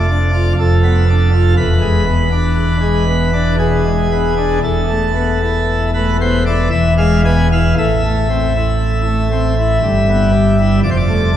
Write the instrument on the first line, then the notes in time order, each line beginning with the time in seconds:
pipe organ
Already playing: F1 F2 D5
0.09 D4
0.34 F4
0.59 F1 F2 A4
0.83 B3
1.09 D4
1.34 F4
1.57 E1 E2 B4
1.81 G#3
2.06 B3
2.32 D4
2.81 G#3
3.08 B3
3.33 D4
3.59 B2 G#4
3.85 G#3
4.11 B3
4.37 D4
4.63 E1 E2 A4
4.89 A3
5.15 B3
5.41 E4
5.94 A3 B4
6.21 B3 C5
6.46 E4 D5
6.71 E1 E2 E5
6.98 G#3 F5
7.25 B3 G#5
7.52 E4 F5
7.78 A1 A2 E5
8.04 A3
8.29 C4
8.56 E4
9.06 A3
9.31 C4
9.58 E4
9.82 G1 G2
10.09 B3
10.32 G3
10.59 E4
10.83 F1 F2 D5
10.91 C5
10.97 D5
11.09 A3
11.34 D4